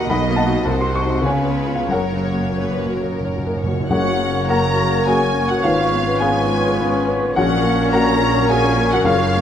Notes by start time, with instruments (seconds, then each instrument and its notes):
Already playing: grand piano D#2 A#2 A#3 D#4 F#4 A#4 D#5 F#5 G#5 A#5 B5, violin section D#5 F#5
0.09 double bass section B1, grand piano B1 D#5 F#5 B5, cello section B2, viola section A#3 F#4, violin section D#5
0.27 grand piano A#3
0.36 grand piano D#5 F#5 A5
0.46 grand piano D#4 F#4
0.65 grand piano C2, double bass section C2, cello section C3, viola section C4, violin section C5
0.81 grand piano C4 C6
0.95 grand piano C#6
1.03 grand piano D#4 F#4
1.10 grand piano C6
1.22 grand piano C#2, double bass section C#2, cello section C#3, viola section B3 F4, violin section B4 C#5
1.26 grand piano C#5 F5 G#5
1.43 grand piano B3
1.66 grand piano C#4 F4
1.76 grand piano F5
1.88 double bass section F#1, grand piano F#2 A#4 F#5, cello section F#2, viola section A#3 F#4, violin section A#4
1.93 grand piano C#5
1.99 timpani F#2
2.12 grand piano C#3
2.16 timpani F#2
2.25 timpani F#2
2.34 timpani F#2, grand piano A#3
2.43 timpani F#2
2.58 timpani F#2, grand piano C#4, violin section B4
2.69 timpani F#2
2.77 timpani F#2, grand piano F#4
2.85 timpani F#2
2.91 timpani F#2, violin section A#4
3.02 timpani F#2, grand piano A#4
3.12 timpani F#2
3.20 timpani F#2
3.25 grand piano C#5
3.29 timpani F#2
3.38 timpani F#2
3.46 timpani F#2, grand piano A#4
3.54 timpani F#2, violin section C#5
3.63 timpani F#2
3.68 timpani F#2, grand piano F#4
3.80 timpani F#2
3.90 double bass section F#1, grand piano F#1 F#2 F#4 C#5 F#5, timpani F#2, cello section F#2, viola section C#3 A#4, bassoon A#3, french horn section C#4 A#4, clarinet F#4, oboe C#5, violin section F#5, flute section C#6
4.04 viola section F#3
4.19 viola section A#3
4.34 viola section C#4
4.48 viola section A#3, grand piano A#3 C#4 F#4 A#4 F#5 A#5, french horn section C#4 A#4, violin section A#5
4.63 viola section F#3
4.77 viola section C#3
4.93 viola section F#3
5.06 grand piano A#3 C#4 F#4 G#4 G#5, viola section A#3, violin section G#5
5.21 viola section C#4
5.35 viola section A#3
5.48 viola section F#3, grand piano F#4 F#5, violin section F#5
5.63 double bass section G#1, grand piano G#1 G#2 F4 C#5 F5, cello section G#2, viola section F3 B4, bassoon B3, french horn section C#4 B4, clarinet F4, violin section F5
5.78 viola section G#3
5.93 viola section B3
6.06 viola section C#4
6.18 viola section B3, grand piano B3 G#4 F5 G#5, french horn section C#4 B4, violin section G#5
6.22 grand piano C#4 F4
6.35 viola section G#3
6.50 viola section F3
6.65 viola section G#3
6.79 viola section B3, grand piano B3 C#4 F4
6.94 viola section C#4
7.08 viola section B3
7.23 viola section G#3
7.35 double bass section A#1, grand piano A#1 A#2 F#4 C#5 F#5, cello section A#2, viola section C#3 A#4, bassoon A#3, clarinet C#4, french horn section C#4 A#4, oboe C#5, violin section F#5, flute section C#6
7.51 viola section F#3
7.66 viola section A#3
7.80 viola section C#4
7.92 grand piano A#3 C#4 F#4 A#4 F#5 A#5, viola section A#3, french horn section C#4 A#4, violin section A#5
8.07 viola section F#3
8.21 viola section C#3
8.35 viola section F#3
8.49 grand piano A#3 C#4 F#4 G#4 G#5, viola section A#3, violin section G#5
8.64 viola section C#4
8.78 viola section A#3
8.92 viola section F#3, grand piano F#4 F#5, violin section F#5
9.04 grand piano F#1 F#2 F4 F5, double bass section F#1, cello section F#2, viola section C#3, french horn section C#4 A#4, violin section F5
9.21 viola section F#3
9.35 viola section A#3